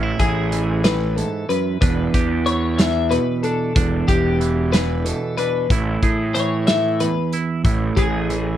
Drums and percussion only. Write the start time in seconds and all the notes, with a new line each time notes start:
0.19 kick, closed hi-hat
0.52 closed hi-hat
0.84 snare, closed hi-hat
1.18 closed hi-hat
1.50 closed hi-hat
1.82 kick, closed hi-hat
2.14 kick, closed hi-hat
2.46 closed hi-hat
2.79 snare, closed hi-hat
3.11 closed hi-hat
3.44 closed hi-hat
3.76 kick, closed hi-hat
4.08 kick, closed hi-hat
4.41 closed hi-hat
4.73 snare, closed hi-hat
5.06 closed hi-hat
5.38 closed hi-hat
5.70 kick, closed hi-hat
6.03 kick, closed hi-hat
6.35 closed hi-hat
6.67 snare, closed hi-hat
7.00 closed hi-hat
7.33 closed hi-hat
7.65 kick, closed hi-hat
7.97 kick, closed hi-hat
8.30 closed hi-hat